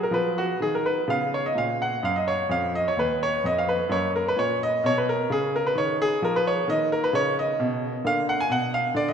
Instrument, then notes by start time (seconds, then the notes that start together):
grand piano
Already playing: B3
0.03 A#4
0.11 F3 B4
0.38 F#4
0.60 D#3 G#4
0.75 A#4
0.86 B4
1.08 C#3 B3 F5
1.34 C#5
1.46 D#5
1.55 A#2 F5
1.82 F#5
2.03 F#2 F5
2.16 D#5
2.28 C#5
2.49 F2 F5
2.75 D#5
2.88 C#5
2.97 D#2 B4
3.23 C#5
3.44 F2 D#5
3.58 F5
3.69 B4
3.89 F#2 A#3 C#5
4.16 A#4
4.28 B4
4.36 A#2 C#5
4.63 D#5
4.84 B2 C#5
4.98 B4
5.09 A#4
5.30 C#3 G#4
5.56 A#4
5.67 B4
5.75 D#3 C#5
6.02 G#4
6.22 F3 A#4
6.36 B4
6.47 C#5
6.68 D#3 A#3 D#5
6.92 A#4
7.04 B4
7.13 C#3 C#5
7.39 D#5
7.60 B2
8.04 D3 A#3 F5
8.29 F#5
8.40 G#5
8.50 B2 F#5
8.74 F5
8.95 D3 D5
9.08 D#5